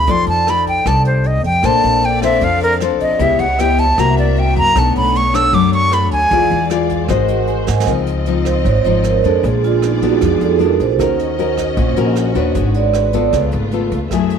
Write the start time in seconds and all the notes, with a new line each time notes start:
Already playing: B5
0.05 F2 F3 D#4 A4 D5, kick, closed hi-hat
0.09 D5 G5 C6
0.27 F2 A5, closed hi-hat
0.47 D#4 A4 D5 B5, cross-stick, closed hi-hat
0.66 G5, kick, closed hi-hat
0.86 C2 C3 D#4 A4 D5 A5, kick, cross-stick, closed hi-hat
1.05 C5, closed hi-hat
1.24 D#5, closed hi-hat
1.44 F2 G5, kick, closed hi-hat
1.61 A#1 A#3 C4 D4 A4 C5 D5, kick, cross-stick, closed hi-hat
1.65 C5 D5 F5 A5
1.82 A#1, closed hi-hat
2.02 G5, closed hi-hat
2.22 D4 A4 C5 E5, kick, cross-stick, closed hi-hat
2.41 F2 F3 F5, kick, closed hi-hat
2.60 A#4, closed hi-hat
2.80 D4 A4 C5, cross-stick, closed hi-hat
3.00 A#1 D#5, kick, closed hi-hat
3.16 C#2 C#3 B3 E4 G4 B4 C#5, kick, closed hi-hat
3.20 E4 G4 D#5 E5
3.39 C#2 F#5, closed hi-hat
3.59 B3 E4 G4 G5, cross-stick, closed hi-hat
3.78 A5, kick, closed hi-hat
3.96 C2 C3 A#3 E4 F#4 A#4 E5 A#5, kick, cross-stick, closed hi-hat
4.01 F#5
4.18 D5, closed hi-hat
4.36 G5, closed hi-hat
4.56 F#2 A#5, kick, closed hi-hat
4.72 B1 A3 B3 D4 A4 C#5, kick, cross-stick, closed hi-hat
4.76 A4 C#5 F#5 A5
4.95 B1 B5, closed hi-hat
5.15 C#6, closed hi-hat
5.34 D4 A4 C#5 E6, kick, cross-stick, closed hi-hat
5.53 F#2 F#3 D6, kick, closed hi-hat
5.73 C#6, closed hi-hat
5.92 D4 A4 C#5 B5, cross-stick, closed hi-hat
6.11 D2 G#5, kick, closed hi-hat
6.29 E2 E3 G#3 F4 G#4 B4 D5, kick, closed hi-hat
6.33 G#4 D5 F5
6.51 E2, closed hi-hat
6.70 F4 G#4 D5, cross-stick, closed hi-hat
6.89 kick, closed hi-hat
7.06 G#1 G#3 F#4 A#4 C5 D#5, kick, cross-stick, closed hi-hat
7.11 D#5 F#5
7.28 closed hi-hat
7.47 G#5, closed hi-hat
7.67 G#2, snare
7.80 snare
7.85 C#2 C#3 F3 C4 D#4 F4 D#5, kick, cross-stick, closed hi-hat
8.07 closed hi-hat
8.26 F3 C4 D#4, closed hi-hat
8.45 C5, kick, cross-stick, closed hi-hat
8.65 G#1 G#2 C#5, kick, closed hi-hat
8.84 G#1 F3 C4 D#4 C5, closed hi-hat
9.04 A#4, cross-stick, closed hi-hat
9.24 F2 G#3 D4 A4, kick, closed hi-hat
9.42 A#1 A#2 B3 G#4 D5, kick, closed hi-hat
9.64 F4, closed hi-hat
9.82 D#4, cross-stick, closed hi-hat
10.02 G#3 B3 D4 F#4, kick, closed hi-hat
10.21 F2 F3, kick, cross-stick, closed hi-hat
10.25 G#4
10.41 F2 A4, closed hi-hat
10.59 G#3 B3 D4, closed hi-hat
10.63 A#4
10.80 A#1 C5, kick, closed hi-hat
10.99 D#2 D#3 C#4 F#4 A#4 D#5, kick, cross-stick, closed hi-hat
11.19 closed hi-hat
11.39 C#4 F#4 A#4, closed hi-hat
11.58 kick, cross-stick, closed hi-hat
11.77 A#1 A#2, kick, closed hi-hat
11.96 A#1 C#4 F#4 A#4, closed hi-hat
12.16 cross-stick, closed hi-hat
12.35 D#2 D4 F#4 B4 C#5, kick, closed hi-hat
12.55 G#1 G#3 B4, kick, closed hi-hat
12.74 D5, closed hi-hat
12.94 cross-stick, closed hi-hat
13.13 B3 F4 A4 D5, kick, closed hi-hat
13.32 C#2 C#3 A3 F4 B4, kick, cross-stick, closed hi-hat
13.36 B4
13.52 G#1, closed hi-hat
13.71 B3 F4 A4, closed hi-hat
13.91 C#2, kick, closed hi-hat
14.11 F#2 F#3 A3 E4 G#4 E5, kick, cross-stick, closed hi-hat
14.30 closed hi-hat